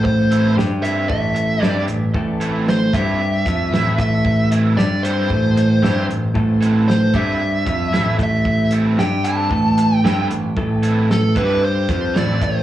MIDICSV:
0, 0, Header, 1, 7, 480
1, 0, Start_track
1, 0, Key_signature, 0, "minor"
1, 0, Tempo, 526316
1, 45, Time_signature, 4, 2, 24, 8
1, 11518, End_track
2, 0, Start_track
2, 0, Title_t, "Lead electric guitar"
2, 0, Program_c, 0, 29
2, 40, Note_on_c, 0, 72, 77
2, 487, Note_off_c, 0, 72, 0
2, 754, Note_on_c, 0, 76, 83
2, 986, Note_off_c, 0, 76, 0
2, 997, Note_on_c, 0, 76, 95
2, 1499, Note_off_c, 0, 76, 0
2, 1499, Note_on_c, 0, 74, 95
2, 1681, Note_off_c, 0, 74, 0
2, 2453, Note_on_c, 0, 72, 76
2, 2681, Note_on_c, 0, 76, 98
2, 2692, Note_off_c, 0, 72, 0
2, 3636, Note_off_c, 0, 76, 0
2, 3647, Note_on_c, 0, 76, 80
2, 4088, Note_off_c, 0, 76, 0
2, 4353, Note_on_c, 0, 74, 86
2, 4588, Note_on_c, 0, 72, 81
2, 4600, Note_off_c, 0, 74, 0
2, 5514, Note_off_c, 0, 72, 0
2, 6278, Note_on_c, 0, 72, 76
2, 6524, Note_off_c, 0, 72, 0
2, 6526, Note_on_c, 0, 76, 87
2, 7445, Note_off_c, 0, 76, 0
2, 7508, Note_on_c, 0, 76, 87
2, 7940, Note_off_c, 0, 76, 0
2, 8202, Note_on_c, 0, 79, 79
2, 8434, Note_off_c, 0, 79, 0
2, 8437, Note_on_c, 0, 81, 98
2, 9085, Note_off_c, 0, 81, 0
2, 9085, Note_on_c, 0, 79, 98
2, 9364, Note_off_c, 0, 79, 0
2, 10135, Note_on_c, 0, 69, 72
2, 10354, Note_off_c, 0, 69, 0
2, 10371, Note_on_c, 0, 71, 85
2, 10615, Note_off_c, 0, 71, 0
2, 10620, Note_on_c, 0, 72, 93
2, 10851, Note_off_c, 0, 72, 0
2, 10862, Note_on_c, 0, 72, 82
2, 11102, Note_off_c, 0, 72, 0
2, 11106, Note_on_c, 0, 74, 91
2, 11341, Note_off_c, 0, 74, 0
2, 11345, Note_on_c, 0, 72, 85
2, 11518, Note_off_c, 0, 72, 0
2, 11518, End_track
3, 0, Start_track
3, 0, Title_t, "Overdriven electric guitar"
3, 0, Program_c, 1, 29
3, 283, Note_on_c, 1, 69, 82
3, 289, Note_on_c, 1, 64, 74
3, 291, Note_on_c, 1, 60, 73
3, 299, Note_on_c, 1, 52, 69
3, 504, Note_off_c, 1, 60, 0
3, 505, Note_off_c, 1, 52, 0
3, 508, Note_off_c, 1, 64, 0
3, 509, Note_off_c, 1, 69, 0
3, 751, Note_on_c, 1, 69, 85
3, 760, Note_on_c, 1, 52, 67
3, 760, Note_on_c, 1, 60, 79
3, 762, Note_on_c, 1, 64, 82
3, 981, Note_off_c, 1, 60, 0
3, 985, Note_off_c, 1, 64, 0
3, 986, Note_off_c, 1, 52, 0
3, 988, Note_off_c, 1, 69, 0
3, 1454, Note_on_c, 1, 52, 78
3, 1461, Note_on_c, 1, 64, 88
3, 1462, Note_on_c, 1, 60, 81
3, 1467, Note_on_c, 1, 69, 81
3, 1696, Note_off_c, 1, 69, 0
3, 1699, Note_off_c, 1, 64, 0
3, 1704, Note_off_c, 1, 60, 0
3, 1706, Note_off_c, 1, 52, 0
3, 2192, Note_on_c, 1, 69, 81
3, 2198, Note_on_c, 1, 64, 78
3, 2200, Note_on_c, 1, 60, 66
3, 2201, Note_on_c, 1, 52, 72
3, 2426, Note_off_c, 1, 52, 0
3, 2430, Note_off_c, 1, 64, 0
3, 2433, Note_off_c, 1, 60, 0
3, 2435, Note_off_c, 1, 69, 0
3, 2680, Note_on_c, 1, 69, 81
3, 2681, Note_on_c, 1, 64, 75
3, 2686, Note_on_c, 1, 60, 69
3, 2689, Note_on_c, 1, 52, 77
3, 2914, Note_off_c, 1, 52, 0
3, 2916, Note_off_c, 1, 60, 0
3, 2916, Note_off_c, 1, 64, 0
3, 2918, Note_off_c, 1, 69, 0
3, 3398, Note_on_c, 1, 52, 75
3, 3400, Note_on_c, 1, 60, 87
3, 3408, Note_on_c, 1, 64, 82
3, 3409, Note_on_c, 1, 69, 85
3, 3626, Note_off_c, 1, 69, 0
3, 3627, Note_off_c, 1, 64, 0
3, 3631, Note_off_c, 1, 60, 0
3, 3637, Note_off_c, 1, 52, 0
3, 4117, Note_on_c, 1, 69, 82
3, 4124, Note_on_c, 1, 64, 75
3, 4129, Note_on_c, 1, 60, 68
3, 4133, Note_on_c, 1, 52, 62
3, 4346, Note_off_c, 1, 52, 0
3, 4348, Note_off_c, 1, 60, 0
3, 4353, Note_off_c, 1, 64, 0
3, 4356, Note_off_c, 1, 69, 0
3, 4603, Note_on_c, 1, 69, 75
3, 4604, Note_on_c, 1, 52, 68
3, 4604, Note_on_c, 1, 64, 70
3, 4608, Note_on_c, 1, 60, 71
3, 4832, Note_off_c, 1, 52, 0
3, 4837, Note_off_c, 1, 60, 0
3, 4838, Note_off_c, 1, 69, 0
3, 4839, Note_off_c, 1, 64, 0
3, 5312, Note_on_c, 1, 52, 78
3, 5315, Note_on_c, 1, 60, 70
3, 5317, Note_on_c, 1, 64, 83
3, 5324, Note_on_c, 1, 69, 82
3, 5545, Note_off_c, 1, 69, 0
3, 5550, Note_off_c, 1, 64, 0
3, 5551, Note_off_c, 1, 60, 0
3, 5553, Note_off_c, 1, 52, 0
3, 6028, Note_on_c, 1, 64, 69
3, 6028, Note_on_c, 1, 69, 85
3, 6035, Note_on_c, 1, 60, 70
3, 6039, Note_on_c, 1, 52, 64
3, 6268, Note_off_c, 1, 52, 0
3, 6271, Note_off_c, 1, 60, 0
3, 6271, Note_off_c, 1, 64, 0
3, 6271, Note_off_c, 1, 69, 0
3, 6511, Note_on_c, 1, 69, 77
3, 6513, Note_on_c, 1, 64, 73
3, 6519, Note_on_c, 1, 52, 69
3, 6522, Note_on_c, 1, 60, 72
3, 6744, Note_off_c, 1, 52, 0
3, 6750, Note_off_c, 1, 64, 0
3, 6752, Note_off_c, 1, 60, 0
3, 6753, Note_off_c, 1, 69, 0
3, 7229, Note_on_c, 1, 52, 79
3, 7232, Note_on_c, 1, 60, 75
3, 7235, Note_on_c, 1, 64, 83
3, 7235, Note_on_c, 1, 69, 84
3, 7462, Note_off_c, 1, 69, 0
3, 7464, Note_off_c, 1, 64, 0
3, 7466, Note_off_c, 1, 60, 0
3, 7469, Note_off_c, 1, 52, 0
3, 7957, Note_on_c, 1, 69, 82
3, 7961, Note_on_c, 1, 64, 74
3, 7962, Note_on_c, 1, 60, 75
3, 7967, Note_on_c, 1, 52, 67
3, 8185, Note_off_c, 1, 52, 0
3, 8189, Note_off_c, 1, 60, 0
3, 8194, Note_off_c, 1, 64, 0
3, 8197, Note_off_c, 1, 69, 0
3, 8439, Note_on_c, 1, 69, 89
3, 8448, Note_on_c, 1, 60, 69
3, 8448, Note_on_c, 1, 64, 75
3, 8453, Note_on_c, 1, 52, 74
3, 8672, Note_off_c, 1, 60, 0
3, 8673, Note_off_c, 1, 69, 0
3, 8674, Note_off_c, 1, 52, 0
3, 8674, Note_off_c, 1, 64, 0
3, 9160, Note_on_c, 1, 52, 84
3, 9167, Note_on_c, 1, 64, 84
3, 9168, Note_on_c, 1, 60, 81
3, 9169, Note_on_c, 1, 69, 94
3, 9389, Note_off_c, 1, 69, 0
3, 9397, Note_off_c, 1, 60, 0
3, 9398, Note_off_c, 1, 64, 0
3, 9401, Note_off_c, 1, 52, 0
3, 9876, Note_on_c, 1, 69, 88
3, 9877, Note_on_c, 1, 64, 85
3, 9879, Note_on_c, 1, 60, 72
3, 9884, Note_on_c, 1, 52, 70
3, 10103, Note_off_c, 1, 52, 0
3, 10110, Note_off_c, 1, 64, 0
3, 10111, Note_off_c, 1, 69, 0
3, 10112, Note_off_c, 1, 60, 0
3, 10355, Note_on_c, 1, 69, 86
3, 10359, Note_on_c, 1, 64, 72
3, 10365, Note_on_c, 1, 60, 74
3, 10371, Note_on_c, 1, 52, 75
3, 10587, Note_off_c, 1, 60, 0
3, 10590, Note_off_c, 1, 52, 0
3, 10591, Note_off_c, 1, 64, 0
3, 10595, Note_off_c, 1, 69, 0
3, 11075, Note_on_c, 1, 52, 81
3, 11085, Note_on_c, 1, 60, 89
3, 11085, Note_on_c, 1, 64, 88
3, 11091, Note_on_c, 1, 69, 86
3, 11299, Note_off_c, 1, 69, 0
3, 11308, Note_off_c, 1, 60, 0
3, 11312, Note_off_c, 1, 64, 0
3, 11313, Note_off_c, 1, 52, 0
3, 11518, End_track
4, 0, Start_track
4, 0, Title_t, "Clean electric guitar"
4, 0, Program_c, 2, 27
4, 0, Note_on_c, 2, 45, 83
4, 0, Note_on_c, 2, 57, 84
4, 515, Note_off_c, 2, 45, 0
4, 520, Note_off_c, 2, 57, 0
4, 520, Note_on_c, 2, 55, 83
4, 528, Note_on_c, 2, 67, 96
4, 993, Note_off_c, 2, 55, 0
4, 995, Note_on_c, 2, 45, 75
4, 997, Note_off_c, 2, 67, 0
4, 1002, Note_on_c, 2, 57, 86
4, 1470, Note_off_c, 2, 45, 0
4, 1473, Note_off_c, 2, 57, 0
4, 1481, Note_on_c, 2, 55, 82
4, 1492, Note_on_c, 2, 67, 97
4, 1713, Note_off_c, 2, 55, 0
4, 1716, Note_on_c, 2, 45, 68
4, 1718, Note_off_c, 2, 67, 0
4, 1910, Note_off_c, 2, 45, 0
4, 1959, Note_on_c, 2, 45, 78
4, 1970, Note_on_c, 2, 57, 89
4, 2670, Note_off_c, 2, 45, 0
4, 2675, Note_on_c, 2, 55, 73
4, 2676, Note_off_c, 2, 57, 0
4, 2687, Note_on_c, 2, 67, 87
4, 3148, Note_off_c, 2, 55, 0
4, 3151, Note_on_c, 2, 53, 79
4, 3154, Note_off_c, 2, 67, 0
4, 3165, Note_on_c, 2, 65, 78
4, 3386, Note_off_c, 2, 53, 0
4, 3391, Note_on_c, 2, 45, 66
4, 3393, Note_off_c, 2, 65, 0
4, 3585, Note_off_c, 2, 45, 0
4, 3632, Note_on_c, 2, 45, 82
4, 3636, Note_on_c, 2, 57, 84
4, 4346, Note_off_c, 2, 45, 0
4, 4348, Note_off_c, 2, 57, 0
4, 4355, Note_on_c, 2, 55, 80
4, 4365, Note_on_c, 2, 67, 93
4, 4827, Note_off_c, 2, 55, 0
4, 4832, Note_off_c, 2, 67, 0
4, 4835, Note_on_c, 2, 45, 83
4, 4840, Note_on_c, 2, 57, 86
4, 5307, Note_off_c, 2, 45, 0
4, 5310, Note_off_c, 2, 57, 0
4, 5312, Note_on_c, 2, 55, 74
4, 5319, Note_on_c, 2, 67, 86
4, 5546, Note_off_c, 2, 55, 0
4, 5549, Note_off_c, 2, 67, 0
4, 5552, Note_on_c, 2, 45, 62
4, 5745, Note_off_c, 2, 45, 0
4, 5787, Note_on_c, 2, 45, 75
4, 5795, Note_on_c, 2, 57, 84
4, 6503, Note_off_c, 2, 45, 0
4, 6508, Note_off_c, 2, 57, 0
4, 6510, Note_on_c, 2, 55, 73
4, 6518, Note_on_c, 2, 67, 79
4, 6980, Note_on_c, 2, 53, 71
4, 6985, Note_off_c, 2, 55, 0
4, 6989, Note_off_c, 2, 67, 0
4, 6990, Note_on_c, 2, 65, 80
4, 7221, Note_off_c, 2, 53, 0
4, 7225, Note_on_c, 2, 45, 68
4, 7226, Note_off_c, 2, 65, 0
4, 7422, Note_off_c, 2, 45, 0
4, 7466, Note_on_c, 2, 45, 83
4, 7474, Note_on_c, 2, 57, 85
4, 8185, Note_off_c, 2, 45, 0
4, 8187, Note_on_c, 2, 55, 83
4, 8189, Note_off_c, 2, 57, 0
4, 8194, Note_on_c, 2, 67, 94
4, 8666, Note_off_c, 2, 55, 0
4, 8670, Note_off_c, 2, 67, 0
4, 8674, Note_on_c, 2, 45, 82
4, 8683, Note_on_c, 2, 57, 90
4, 9150, Note_off_c, 2, 45, 0
4, 9155, Note_off_c, 2, 57, 0
4, 9160, Note_on_c, 2, 55, 84
4, 9164, Note_on_c, 2, 67, 89
4, 9393, Note_off_c, 2, 55, 0
4, 9396, Note_off_c, 2, 67, 0
4, 9406, Note_on_c, 2, 45, 65
4, 9596, Note_off_c, 2, 45, 0
4, 9639, Note_on_c, 2, 45, 79
4, 9650, Note_on_c, 2, 57, 89
4, 10356, Note_off_c, 2, 45, 0
4, 10361, Note_off_c, 2, 57, 0
4, 10365, Note_on_c, 2, 55, 73
4, 10374, Note_on_c, 2, 67, 88
4, 10839, Note_off_c, 2, 55, 0
4, 10843, Note_off_c, 2, 67, 0
4, 10845, Note_on_c, 2, 53, 86
4, 10853, Note_on_c, 2, 65, 89
4, 11079, Note_off_c, 2, 53, 0
4, 11083, Note_off_c, 2, 65, 0
4, 11093, Note_on_c, 2, 45, 68
4, 11282, Note_off_c, 2, 45, 0
4, 11320, Note_on_c, 2, 45, 89
4, 11331, Note_on_c, 2, 57, 84
4, 11518, Note_off_c, 2, 45, 0
4, 11518, Note_off_c, 2, 57, 0
4, 11518, End_track
5, 0, Start_track
5, 0, Title_t, "Picked electric bass"
5, 0, Program_c, 3, 34
5, 0, Note_on_c, 3, 33, 79
5, 486, Note_off_c, 3, 33, 0
5, 523, Note_on_c, 3, 43, 84
5, 968, Note_off_c, 3, 43, 0
5, 1001, Note_on_c, 3, 33, 84
5, 1446, Note_off_c, 3, 33, 0
5, 1478, Note_on_c, 3, 43, 85
5, 1702, Note_off_c, 3, 43, 0
5, 1727, Note_on_c, 3, 33, 65
5, 1946, Note_off_c, 3, 33, 0
5, 1957, Note_on_c, 3, 33, 84
5, 2640, Note_off_c, 3, 33, 0
5, 2676, Note_on_c, 3, 43, 83
5, 3122, Note_off_c, 3, 43, 0
5, 3159, Note_on_c, 3, 41, 76
5, 3381, Note_off_c, 3, 41, 0
5, 3384, Note_on_c, 3, 33, 70
5, 3613, Note_off_c, 3, 33, 0
5, 3632, Note_on_c, 3, 33, 74
5, 4316, Note_off_c, 3, 33, 0
5, 4352, Note_on_c, 3, 43, 84
5, 4799, Note_off_c, 3, 43, 0
5, 4838, Note_on_c, 3, 33, 82
5, 5282, Note_off_c, 3, 33, 0
5, 5315, Note_on_c, 3, 43, 80
5, 5537, Note_off_c, 3, 43, 0
5, 5553, Note_on_c, 3, 33, 67
5, 5776, Note_off_c, 3, 33, 0
5, 5796, Note_on_c, 3, 33, 81
5, 6479, Note_off_c, 3, 33, 0
5, 6512, Note_on_c, 3, 43, 76
5, 6960, Note_off_c, 3, 43, 0
5, 6995, Note_on_c, 3, 41, 82
5, 7219, Note_off_c, 3, 41, 0
5, 7241, Note_on_c, 3, 33, 70
5, 7462, Note_off_c, 3, 33, 0
5, 7469, Note_on_c, 3, 33, 85
5, 8158, Note_off_c, 3, 33, 0
5, 8200, Note_on_c, 3, 43, 86
5, 8647, Note_off_c, 3, 43, 0
5, 8672, Note_on_c, 3, 33, 79
5, 9123, Note_off_c, 3, 33, 0
5, 9156, Note_on_c, 3, 43, 84
5, 9382, Note_off_c, 3, 43, 0
5, 9394, Note_on_c, 3, 33, 70
5, 9621, Note_off_c, 3, 33, 0
5, 9641, Note_on_c, 3, 33, 84
5, 10327, Note_off_c, 3, 33, 0
5, 10363, Note_on_c, 3, 43, 86
5, 10811, Note_off_c, 3, 43, 0
5, 10843, Note_on_c, 3, 41, 85
5, 11068, Note_off_c, 3, 41, 0
5, 11094, Note_on_c, 3, 33, 76
5, 11314, Note_off_c, 3, 33, 0
5, 11323, Note_on_c, 3, 33, 84
5, 11518, Note_off_c, 3, 33, 0
5, 11518, End_track
6, 0, Start_track
6, 0, Title_t, "Muted overdriven electric guitar strokes"
6, 39, Note_on_c, 9, 29, 46
6, 130, Note_off_c, 9, 29, 0
6, 515, Note_on_c, 9, 29, 44
6, 607, Note_off_c, 9, 29, 0
6, 992, Note_on_c, 9, 29, 39
6, 1083, Note_off_c, 9, 29, 0
6, 1229, Note_on_c, 9, 29, 40
6, 1320, Note_off_c, 9, 29, 0
6, 1707, Note_on_c, 9, 29, 49
6, 1798, Note_off_c, 9, 29, 0
6, 1950, Note_on_c, 9, 29, 43
6, 2042, Note_off_c, 9, 29, 0
6, 2437, Note_on_c, 9, 29, 45
6, 2529, Note_off_c, 9, 29, 0
6, 2925, Note_on_c, 9, 29, 40
6, 3017, Note_off_c, 9, 29, 0
6, 3168, Note_on_c, 9, 29, 43
6, 3259, Note_off_c, 9, 29, 0
6, 3637, Note_on_c, 9, 29, 45
6, 3728, Note_off_c, 9, 29, 0
6, 3874, Note_on_c, 9, 29, 44
6, 3965, Note_off_c, 9, 29, 0
6, 4357, Note_on_c, 9, 29, 44
6, 4448, Note_off_c, 9, 29, 0
6, 4843, Note_on_c, 9, 29, 39
6, 4934, Note_off_c, 9, 29, 0
6, 5077, Note_on_c, 9, 29, 39
6, 5169, Note_off_c, 9, 29, 0
6, 5556, Note_on_c, 9, 29, 42
6, 5648, Note_off_c, 9, 29, 0
6, 5798, Note_on_c, 9, 29, 41
6, 5890, Note_off_c, 9, 29, 0
6, 6279, Note_on_c, 9, 29, 38
6, 6370, Note_off_c, 9, 29, 0
6, 6755, Note_on_c, 9, 29, 38
6, 6846, Note_off_c, 9, 29, 0
6, 6992, Note_on_c, 9, 29, 43
6, 7083, Note_off_c, 9, 29, 0
6, 7473, Note_on_c, 9, 29, 46
6, 7565, Note_off_c, 9, 29, 0
6, 7710, Note_on_c, 9, 29, 41
6, 7801, Note_off_c, 9, 29, 0
6, 8196, Note_on_c, 9, 29, 44
6, 8288, Note_off_c, 9, 29, 0
6, 8683, Note_on_c, 9, 29, 37
6, 8774, Note_off_c, 9, 29, 0
6, 8919, Note_on_c, 9, 29, 41
6, 9010, Note_off_c, 9, 29, 0
6, 9400, Note_on_c, 9, 29, 43
6, 9491, Note_off_c, 9, 29, 0
6, 9637, Note_on_c, 9, 29, 39
6, 9729, Note_off_c, 9, 29, 0
6, 10114, Note_on_c, 9, 29, 44
6, 10206, Note_off_c, 9, 29, 0
6, 10598, Note_on_c, 9, 29, 41
6, 10690, Note_off_c, 9, 29, 0
6, 10845, Note_on_c, 9, 29, 41
6, 10936, Note_off_c, 9, 29, 0
6, 11310, Note_on_c, 9, 29, 43
6, 11401, Note_off_c, 9, 29, 0
6, 11518, End_track
7, 0, Start_track
7, 0, Title_t, "Drums"
7, 45, Note_on_c, 9, 36, 86
7, 136, Note_off_c, 9, 36, 0
7, 288, Note_on_c, 9, 42, 73
7, 379, Note_off_c, 9, 42, 0
7, 539, Note_on_c, 9, 38, 93
7, 630, Note_off_c, 9, 38, 0
7, 771, Note_on_c, 9, 42, 70
7, 862, Note_off_c, 9, 42, 0
7, 1000, Note_on_c, 9, 36, 97
7, 1091, Note_off_c, 9, 36, 0
7, 1240, Note_on_c, 9, 42, 70
7, 1331, Note_off_c, 9, 42, 0
7, 1486, Note_on_c, 9, 38, 95
7, 1578, Note_off_c, 9, 38, 0
7, 1714, Note_on_c, 9, 42, 69
7, 1806, Note_off_c, 9, 42, 0
7, 1956, Note_on_c, 9, 36, 89
7, 2047, Note_off_c, 9, 36, 0
7, 2199, Note_on_c, 9, 42, 73
7, 2290, Note_off_c, 9, 42, 0
7, 2449, Note_on_c, 9, 38, 88
7, 2540, Note_off_c, 9, 38, 0
7, 2676, Note_on_c, 9, 36, 84
7, 2683, Note_on_c, 9, 42, 75
7, 2768, Note_off_c, 9, 36, 0
7, 2774, Note_off_c, 9, 42, 0
7, 3156, Note_on_c, 9, 36, 92
7, 3162, Note_on_c, 9, 42, 81
7, 3247, Note_off_c, 9, 36, 0
7, 3253, Note_off_c, 9, 42, 0
7, 3408, Note_on_c, 9, 38, 100
7, 3500, Note_off_c, 9, 38, 0
7, 3635, Note_on_c, 9, 36, 91
7, 3641, Note_on_c, 9, 42, 77
7, 3726, Note_off_c, 9, 36, 0
7, 3732, Note_off_c, 9, 42, 0
7, 3874, Note_on_c, 9, 36, 89
7, 3965, Note_off_c, 9, 36, 0
7, 4120, Note_on_c, 9, 42, 77
7, 4211, Note_off_c, 9, 42, 0
7, 4365, Note_on_c, 9, 38, 90
7, 4456, Note_off_c, 9, 38, 0
7, 4604, Note_on_c, 9, 42, 77
7, 4695, Note_off_c, 9, 42, 0
7, 4836, Note_on_c, 9, 36, 87
7, 4927, Note_off_c, 9, 36, 0
7, 5083, Note_on_c, 9, 42, 73
7, 5175, Note_off_c, 9, 42, 0
7, 5330, Note_on_c, 9, 38, 99
7, 5421, Note_off_c, 9, 38, 0
7, 5568, Note_on_c, 9, 42, 68
7, 5660, Note_off_c, 9, 42, 0
7, 5794, Note_on_c, 9, 36, 94
7, 5885, Note_off_c, 9, 36, 0
7, 6041, Note_on_c, 9, 42, 68
7, 6132, Note_off_c, 9, 42, 0
7, 6291, Note_on_c, 9, 38, 95
7, 6382, Note_off_c, 9, 38, 0
7, 6511, Note_on_c, 9, 36, 88
7, 6513, Note_on_c, 9, 42, 67
7, 6602, Note_off_c, 9, 36, 0
7, 6604, Note_off_c, 9, 42, 0
7, 6991, Note_on_c, 9, 36, 94
7, 6994, Note_on_c, 9, 42, 72
7, 7082, Note_off_c, 9, 36, 0
7, 7085, Note_off_c, 9, 42, 0
7, 7241, Note_on_c, 9, 38, 100
7, 7332, Note_off_c, 9, 38, 0
7, 7471, Note_on_c, 9, 36, 85
7, 7472, Note_on_c, 9, 42, 77
7, 7562, Note_off_c, 9, 36, 0
7, 7563, Note_off_c, 9, 42, 0
7, 7708, Note_on_c, 9, 36, 97
7, 7800, Note_off_c, 9, 36, 0
7, 7942, Note_on_c, 9, 42, 72
7, 8033, Note_off_c, 9, 42, 0
7, 8198, Note_on_c, 9, 38, 91
7, 8290, Note_off_c, 9, 38, 0
7, 8432, Note_on_c, 9, 42, 78
7, 8523, Note_off_c, 9, 42, 0
7, 8671, Note_on_c, 9, 36, 98
7, 8762, Note_off_c, 9, 36, 0
7, 8918, Note_on_c, 9, 42, 78
7, 9009, Note_off_c, 9, 42, 0
7, 9172, Note_on_c, 9, 38, 96
7, 9263, Note_off_c, 9, 38, 0
7, 9400, Note_on_c, 9, 42, 75
7, 9492, Note_off_c, 9, 42, 0
7, 9637, Note_on_c, 9, 36, 90
7, 9728, Note_off_c, 9, 36, 0
7, 9877, Note_on_c, 9, 42, 70
7, 9969, Note_off_c, 9, 42, 0
7, 10133, Note_on_c, 9, 38, 94
7, 10224, Note_off_c, 9, 38, 0
7, 10360, Note_on_c, 9, 42, 67
7, 10361, Note_on_c, 9, 36, 93
7, 10452, Note_off_c, 9, 36, 0
7, 10452, Note_off_c, 9, 42, 0
7, 10842, Note_on_c, 9, 36, 96
7, 10846, Note_on_c, 9, 42, 70
7, 10933, Note_off_c, 9, 36, 0
7, 10937, Note_off_c, 9, 42, 0
7, 11090, Note_on_c, 9, 38, 103
7, 11181, Note_off_c, 9, 38, 0
7, 11323, Note_on_c, 9, 36, 91
7, 11324, Note_on_c, 9, 42, 76
7, 11414, Note_off_c, 9, 36, 0
7, 11415, Note_off_c, 9, 42, 0
7, 11518, End_track
0, 0, End_of_file